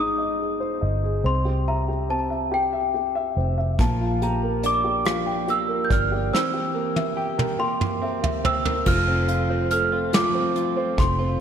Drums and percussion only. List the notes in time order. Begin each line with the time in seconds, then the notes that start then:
3.79 kick, closed hi-hat
4.22 closed hi-hat
4.63 closed hi-hat
5.05 cross-stick, closed hi-hat
5.48 closed hi-hat
5.91 kick, closed hi-hat
6.34 snare
6.96 high tom
7.39 mid tom
7.81 mid tom
8.24 floor tom
8.45 floor tom
8.65 floor tom
8.86 kick, crash
9.28 closed hi-hat
9.71 closed hi-hat
10.13 snare, closed hi-hat
10.56 closed hi-hat
10.98 kick, closed hi-hat